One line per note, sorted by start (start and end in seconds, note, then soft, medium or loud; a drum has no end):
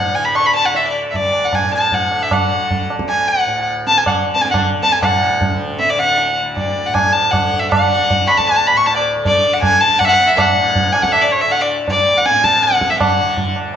0.00 1.11 D2 medium
0.00 1.60 A2 medium
0.00 0.17 D3 medium
0.00 0.17 F#5 medium
0.15 0.64 D3 medium
0.15 0.27 G#5 medium
0.25 0.37 B5 medium
0.35 0.47 C#6 loud
0.35 tabla na medium
0.46 0.55 B5 medium
0.56 0.67 A5 loud
0.64 2.08 D3 medium
0.64 0.78 F#5 medium
0.75 0.87 E5 medium
0.75 tabla tin medium
0.85 0.94 D5 medium
1.11 2.99 D2 medium
1.11 1.17 E5 medium
1.11 tabla tin medium
1.11 tabla ge medium
1.16 1.47 D5 medium
1.33 tabla na medium
1.45 1.57 F#5 medium
1.53 1.74 G#5 medium
1.53 tabla na medium
1.53 tabla ge medium
1.61 3.45 A2 medium
1.73 1.96 A5 medium
1.73 tabla te medium
1.92 2.24 F#5 medium
1.92 tabla tin medium
1.92 tabla ge medium
2.08 2.54 D3 medium
2.08 tabla na medium
2.23 2.34 E5 medium
2.31 2.91 F#5 medium
2.31 tabla na loud
2.31 tabla ge medium
2.54 3.93 D3 medium
2.71 tabla tin medium
2.71 tabla ge medium
2.90 tabla na medium
2.99 4.86 D2 medium
2.99 tabla ke medium
3.09 3.30 G#5 loud
3.09 tabla na medium
3.28 3.67 F#5 loud
3.45 5.03 A2 medium
3.45 tabla tin medium
3.87 4.00 A5 loud
3.87 tabla te medium
3.93 4.41 D3 medium
3.97 4.06 G#5 medium
3.97 tabla te medium
4.06 4.15 F#5 medium
4.06 tabla na medium
4.06 tabla ge medium
4.34 4.43 A5 medium
4.34 tabla te medium
4.41 5.49 D3 medium
4.41 4.50 G#5 medium
4.45 tabla te medium
4.51 4.62 F#5 medium
4.51 tabla na loud
4.51 tabla ge loud
4.83 6.42 D2 medium
4.83 4.94 A5 loud
4.83 tabla te medium
4.92 5.01 G#5 medium
4.92 tabla te medium
5.02 6.88 A2 medium
5.02 5.56 F#5 medium
5.02 tabla na loud
5.02 tabla ge loud
5.41 tabla tin medium
5.41 tabla ge medium
5.49 5.96 D3 medium
5.79 5.91 E5 loud
5.79 tabla te medium
5.90 6.00 D5 medium
5.96 7.33 D3 medium
5.96 6.38 F#5 loud
5.96 tabla te medium
6.18 tabla tin medium
6.42 8.25 D2 medium
6.57 6.88 D5 medium
6.57 tabla tin medium
6.57 tabla ge medium
6.86 8.72 A2 medium
6.86 6.96 F#5 medium
6.94 7.15 G#5 loud
6.94 tabla na medium
6.94 tabla ge medium
7.13 7.33 A5 medium
7.31 7.80 D3 medium
7.31 7.61 F#5 medium
7.31 tabla na medium
7.31 tabla ge medium
7.53 tabla ge medium
7.60 7.71 E5 medium
7.72 8.28 F#5 loud
7.72 tabla na loud
7.72 tabla ge loud
7.80 9.16 D3 medium
8.10 tabla tin medium
8.10 tabla ge medium
8.25 10.07 D2 medium
8.25 8.39 B5 loud
8.25 8.29 C#6 medium
8.29 tabla na medium
8.38 8.49 A5 medium
8.38 tabla ke medium
8.47 8.58 G#5 loud
8.47 tabla na medium
8.57 8.69 A5 loud
8.67 8.78 B5 loud
8.67 tabla na medium
8.72 10.51 A2 medium
8.77 8.88 C#6 medium
8.86 8.96 A5 loud
8.86 tabla tin medium
8.96 9.05 D5 medium
9.16 9.62 D3 medium
9.25 9.55 D5 medium
9.25 tabla tin medium
9.25 tabla ge medium
9.54 9.62 F#5 medium
9.62 10.98 D3 medium
9.62 9.82 G#5 loud
9.62 tabla na medium
9.62 tabla ge medium
9.81 10.01 A5 loud
9.99 10.07 F#5 loud
9.99 tabla na medium
9.99 tabla ge medium
10.05 11.85 D2 medium
10.05 10.09 E5 medium
10.05 10.28 F#5 loud
10.20 tabla te medium
10.27 10.39 E5 medium
10.38 10.94 F#5 loud
10.38 tabla na loud
10.38 tabla ge loud
10.52 12.30 A2 medium
10.75 tabla tin medium
10.75 tabla ge medium
10.93 11.04 G#5 loud
10.93 tabla na medium
10.98 11.43 D3 medium
11.03 11.14 F#5 medium
11.03 tabla ke medium
11.12 11.23 E5 loud
11.12 tabla na medium
11.22 11.33 D5 medium
11.32 11.43 C#5 medium
11.41 12.76 D3 medium
11.41 11.53 E5 medium
11.50 11.63 F#5 loud
11.50 tabla tin medium
11.61 11.70 D5 medium
11.86 13.64 D2 medium
11.86 tabla tin medium
11.86 tabla ge medium
11.91 12.19 D5 loud
12.18 12.27 F#5 loud
12.26 12.46 G#5 loud
12.26 tabla te medium
12.30 13.76 A2 medium
12.35 tabla te medium
12.44 12.64 A5 loud
12.44 tabla ke medium
12.53 tabla te medium
12.62 12.92 F#5 loud
12.62 tabla te medium
12.72 tabla te medium
12.76 13.20 D3 medium
12.81 tabla ke medium
12.90 12.99 E5 medium
12.90 tabla te medium
13.00 13.52 F#5 medium
13.00 tabla na loud
13.00 tabla ge loud
13.20 13.76 D3 medium
13.37 tabla tin loud
13.37 tabla ge medium
13.56 tabla na medium
13.64 13.76 D2 medium